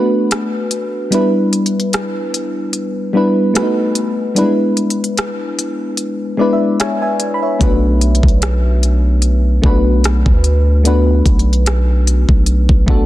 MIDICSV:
0, 0, Header, 1, 4, 480
1, 0, Start_track
1, 0, Key_signature, 2, "minor"
1, 0, Tempo, 810811
1, 664, Time_signature, 4, 2, 24, 8
1, 7730, End_track
2, 0, Start_track
2, 0, Title_t, "FM electric piano"
2, 0, Program_c, 0, 5
2, 0, Control_c, 0, 64, 127
2, 0, Note_on_c, 0, 57, 86
2, 0, Note_on_c, 0, 59, 76
2, 0, Note_on_c, 0, 62, 74
2, 0, Note_on_c, 0, 66, 77
2, 0, Note_on_c, 0, 71, 90
2, 594, Note_off_c, 0, 57, 0
2, 597, Note_off_c, 0, 59, 0
2, 600, Note_off_c, 0, 62, 0
2, 602, Note_off_c, 0, 66, 0
2, 605, Note_off_c, 0, 71, 0
2, 654, Note_on_c, 0, 55, 81
2, 660, Note_on_c, 0, 59, 72
2, 666, Note_on_c, 0, 62, 78
2, 670, Control_c, 0, 64, 0
2, 672, Note_on_c, 0, 64, 77
2, 677, Note_on_c, 0, 71, 90
2, 795, Control_c, 0, 64, 127
2, 1532, Note_off_c, 0, 55, 0
2, 1535, Note_off_c, 0, 59, 0
2, 1538, Note_off_c, 0, 62, 0
2, 1541, Note_off_c, 0, 64, 0
2, 1544, Note_off_c, 0, 71, 0
2, 1854, Note_on_c, 0, 55, 82
2, 1860, Note_on_c, 0, 59, 77
2, 1865, Note_on_c, 0, 62, 74
2, 1871, Note_on_c, 0, 64, 74
2, 1877, Note_on_c, 0, 71, 88
2, 2093, Note_off_c, 0, 59, 0
2, 2094, Note_on_c, 0, 57, 87
2, 2098, Note_off_c, 0, 62, 0
2, 2099, Note_off_c, 0, 55, 0
2, 2100, Note_on_c, 0, 59, 75
2, 2106, Note_on_c, 0, 62, 62
2, 2107, Note_off_c, 0, 64, 0
2, 2110, Note_off_c, 0, 71, 0
2, 2110, Control_c, 0, 64, 0
2, 2112, Note_on_c, 0, 66, 76
2, 2117, Note_on_c, 0, 71, 98
2, 2144, Note_on_c, 0, 63, 77
2, 2146, Note_off_c, 0, 62, 0
2, 2227, Control_c, 0, 64, 127
2, 2536, Note_off_c, 0, 57, 0
2, 2538, Note_off_c, 0, 59, 0
2, 2544, Note_off_c, 0, 66, 0
2, 2547, Note_off_c, 0, 71, 0
2, 2560, Note_off_c, 0, 63, 0
2, 2573, Note_on_c, 0, 55, 65
2, 2579, Note_on_c, 0, 59, 72
2, 2585, Note_on_c, 0, 62, 77
2, 2590, Control_c, 0, 64, 0
2, 2591, Note_on_c, 0, 64, 74
2, 2596, Note_on_c, 0, 71, 91
2, 2612, Note_on_c, 0, 56, 78
2, 2620, Note_off_c, 0, 55, 0
2, 2685, Control_c, 0, 64, 127
2, 3455, Note_off_c, 0, 59, 0
2, 3458, Note_off_c, 0, 62, 0
2, 3460, Note_off_c, 0, 64, 0
2, 3463, Note_off_c, 0, 71, 0
2, 3471, Note_off_c, 0, 56, 0
2, 3773, Note_on_c, 0, 56, 81
2, 3779, Note_on_c, 0, 59, 74
2, 3784, Note_on_c, 0, 74, 71
2, 3785, Note_on_c, 0, 62, 74
2, 3790, Note_on_c, 0, 64, 73
2, 3796, Note_on_c, 0, 71, 92
2, 3858, Note_off_c, 0, 74, 0
2, 3865, Note_on_c, 0, 76, 65
2, 4013, Note_off_c, 0, 76, 0
2, 4025, Note_on_c, 0, 76, 64
2, 4026, Note_on_c, 0, 80, 70
2, 4029, Note_on_c, 0, 73, 55
2, 4148, Note_off_c, 0, 76, 0
2, 4148, Note_off_c, 0, 80, 0
2, 4150, Note_off_c, 0, 73, 0
2, 4155, Note_on_c, 0, 80, 70
2, 4159, Note_on_c, 0, 76, 57
2, 4346, Note_on_c, 0, 83, 63
2, 4382, Note_off_c, 0, 80, 0
2, 4384, Note_off_c, 0, 76, 0
2, 4396, Note_on_c, 0, 76, 56
2, 4399, Note_on_c, 0, 73, 52
2, 4433, Note_off_c, 0, 56, 0
2, 4436, Note_off_c, 0, 59, 0
2, 4439, Note_off_c, 0, 62, 0
2, 4442, Note_off_c, 0, 64, 0
2, 4445, Note_off_c, 0, 71, 0
2, 4494, Note_off_c, 0, 83, 0
2, 4496, Note_on_c, 0, 57, 77
2, 4501, Note_on_c, 0, 59, 71
2, 4506, Note_on_c, 0, 62, 74
2, 4512, Control_c, 0, 64, 0
2, 4512, Note_on_c, 0, 66, 73
2, 4518, Note_on_c, 0, 71, 86
2, 4612, Control_c, 0, 64, 127
2, 4623, Note_off_c, 0, 76, 0
2, 4624, Note_off_c, 0, 73, 0
2, 5373, Note_off_c, 0, 57, 0
2, 5376, Note_off_c, 0, 59, 0
2, 5378, Note_off_c, 0, 62, 0
2, 5381, Note_off_c, 0, 66, 0
2, 5384, Note_off_c, 0, 71, 0
2, 5694, Note_on_c, 0, 57, 80
2, 5700, Note_on_c, 0, 59, 76
2, 5705, Note_on_c, 0, 62, 70
2, 5711, Note_on_c, 0, 66, 71
2, 5717, Note_on_c, 0, 71, 94
2, 6354, Note_off_c, 0, 57, 0
2, 6357, Note_off_c, 0, 59, 0
2, 6359, Note_off_c, 0, 62, 0
2, 6362, Note_off_c, 0, 66, 0
2, 6365, Note_off_c, 0, 71, 0
2, 6415, Note_on_c, 0, 57, 80
2, 6421, Note_on_c, 0, 59, 71
2, 6427, Note_on_c, 0, 62, 74
2, 6432, Note_on_c, 0, 66, 73
2, 6438, Note_on_c, 0, 71, 86
2, 7293, Note_off_c, 0, 57, 0
2, 7296, Note_off_c, 0, 59, 0
2, 7298, Note_off_c, 0, 62, 0
2, 7301, Note_off_c, 0, 66, 0
2, 7304, Note_off_c, 0, 71, 0
2, 7616, Note_on_c, 0, 57, 84
2, 7622, Note_on_c, 0, 59, 80
2, 7627, Note_on_c, 0, 62, 74
2, 7633, Note_on_c, 0, 66, 79
2, 7639, Note_on_c, 0, 69, 93
2, 7730, Note_off_c, 0, 57, 0
2, 7730, Note_off_c, 0, 59, 0
2, 7730, Note_off_c, 0, 62, 0
2, 7730, Note_off_c, 0, 66, 0
2, 7730, Note_off_c, 0, 69, 0
2, 7730, End_track
3, 0, Start_track
3, 0, Title_t, "808-style bass"
3, 0, Program_c, 1, 38
3, 4505, Note_on_c, 1, 35, 97
3, 4859, Note_off_c, 1, 35, 0
3, 4875, Note_on_c, 1, 35, 94
3, 5681, Note_off_c, 1, 35, 0
3, 5706, Note_on_c, 1, 35, 94
3, 6059, Note_off_c, 1, 35, 0
3, 6075, Note_on_c, 1, 38, 98
3, 6641, Note_off_c, 1, 38, 0
3, 6665, Note_on_c, 1, 35, 107
3, 7250, Note_off_c, 1, 35, 0
3, 7275, Note_on_c, 1, 35, 96
3, 7505, Note_off_c, 1, 35, 0
3, 7515, Note_on_c, 1, 35, 93
3, 7730, Note_off_c, 1, 35, 0
3, 7730, End_track
4, 0, Start_track
4, 0, Title_t, "Drums"
4, 184, Note_on_c, 9, 42, 66
4, 190, Note_on_c, 9, 37, 113
4, 243, Note_off_c, 9, 42, 0
4, 250, Note_off_c, 9, 37, 0
4, 419, Note_on_c, 9, 42, 59
4, 479, Note_off_c, 9, 42, 0
4, 663, Note_on_c, 9, 42, 66
4, 723, Note_off_c, 9, 42, 0
4, 904, Note_on_c, 9, 42, 64
4, 964, Note_off_c, 9, 42, 0
4, 983, Note_on_c, 9, 42, 50
4, 1042, Note_off_c, 9, 42, 0
4, 1064, Note_on_c, 9, 42, 36
4, 1123, Note_off_c, 9, 42, 0
4, 1143, Note_on_c, 9, 42, 64
4, 1149, Note_on_c, 9, 37, 117
4, 1202, Note_off_c, 9, 42, 0
4, 1209, Note_off_c, 9, 37, 0
4, 1386, Note_on_c, 9, 42, 65
4, 1445, Note_off_c, 9, 42, 0
4, 1617, Note_on_c, 9, 42, 61
4, 1676, Note_off_c, 9, 42, 0
4, 2104, Note_on_c, 9, 42, 68
4, 2110, Note_on_c, 9, 37, 116
4, 2163, Note_off_c, 9, 42, 0
4, 2170, Note_off_c, 9, 37, 0
4, 2340, Note_on_c, 9, 42, 60
4, 2399, Note_off_c, 9, 42, 0
4, 2583, Note_on_c, 9, 42, 60
4, 2642, Note_off_c, 9, 42, 0
4, 2823, Note_on_c, 9, 42, 51
4, 2882, Note_off_c, 9, 42, 0
4, 2903, Note_on_c, 9, 42, 51
4, 2962, Note_off_c, 9, 42, 0
4, 2983, Note_on_c, 9, 42, 48
4, 3042, Note_off_c, 9, 42, 0
4, 3064, Note_on_c, 9, 42, 64
4, 3070, Note_on_c, 9, 37, 109
4, 3123, Note_off_c, 9, 42, 0
4, 3129, Note_off_c, 9, 37, 0
4, 3307, Note_on_c, 9, 42, 65
4, 3366, Note_off_c, 9, 42, 0
4, 3536, Note_on_c, 9, 42, 57
4, 3595, Note_off_c, 9, 42, 0
4, 4024, Note_on_c, 9, 42, 63
4, 4031, Note_on_c, 9, 37, 119
4, 4083, Note_off_c, 9, 42, 0
4, 4090, Note_off_c, 9, 37, 0
4, 4260, Note_on_c, 9, 42, 58
4, 4319, Note_off_c, 9, 42, 0
4, 4504, Note_on_c, 9, 36, 105
4, 4504, Note_on_c, 9, 42, 61
4, 4563, Note_off_c, 9, 36, 0
4, 4563, Note_off_c, 9, 42, 0
4, 4744, Note_on_c, 9, 42, 63
4, 4803, Note_off_c, 9, 42, 0
4, 4824, Note_on_c, 9, 42, 48
4, 4874, Note_on_c, 9, 36, 82
4, 4883, Note_off_c, 9, 42, 0
4, 4904, Note_on_c, 9, 42, 33
4, 4933, Note_off_c, 9, 36, 0
4, 4963, Note_off_c, 9, 42, 0
4, 4984, Note_on_c, 9, 42, 62
4, 4990, Note_on_c, 9, 37, 110
4, 5043, Note_off_c, 9, 42, 0
4, 5049, Note_off_c, 9, 37, 0
4, 5228, Note_on_c, 9, 42, 65
4, 5287, Note_off_c, 9, 42, 0
4, 5458, Note_on_c, 9, 42, 59
4, 5517, Note_off_c, 9, 42, 0
4, 5704, Note_on_c, 9, 36, 83
4, 5763, Note_off_c, 9, 36, 0
4, 5945, Note_on_c, 9, 42, 63
4, 5952, Note_on_c, 9, 37, 110
4, 6004, Note_off_c, 9, 42, 0
4, 6011, Note_off_c, 9, 37, 0
4, 6073, Note_on_c, 9, 36, 84
4, 6133, Note_off_c, 9, 36, 0
4, 6181, Note_on_c, 9, 42, 61
4, 6240, Note_off_c, 9, 42, 0
4, 6424, Note_on_c, 9, 42, 60
4, 6484, Note_off_c, 9, 42, 0
4, 6663, Note_on_c, 9, 36, 89
4, 6664, Note_on_c, 9, 42, 65
4, 6723, Note_off_c, 9, 36, 0
4, 6723, Note_off_c, 9, 42, 0
4, 6745, Note_on_c, 9, 42, 48
4, 6804, Note_off_c, 9, 42, 0
4, 6825, Note_on_c, 9, 42, 34
4, 6884, Note_off_c, 9, 42, 0
4, 6905, Note_on_c, 9, 42, 62
4, 6911, Note_on_c, 9, 37, 112
4, 6964, Note_off_c, 9, 42, 0
4, 6970, Note_off_c, 9, 37, 0
4, 7148, Note_on_c, 9, 42, 65
4, 7207, Note_off_c, 9, 42, 0
4, 7274, Note_on_c, 9, 36, 87
4, 7333, Note_off_c, 9, 36, 0
4, 7378, Note_on_c, 9, 42, 59
4, 7437, Note_off_c, 9, 42, 0
4, 7513, Note_on_c, 9, 36, 78
4, 7572, Note_off_c, 9, 36, 0
4, 7625, Note_on_c, 9, 36, 84
4, 7684, Note_off_c, 9, 36, 0
4, 7730, End_track
0, 0, End_of_file